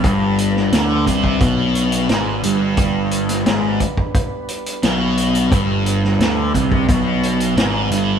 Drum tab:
HH |x-x-x-x-x-xxx-x-|x-xxx-x-x-xxx-xx|x-x-x-x-x-xxx-x-|
SD |---oo-------o---|---oo-------o---|---oo-------o---|
BD |o-----ooo-------|o-----ooo-------|o-----ooo-------|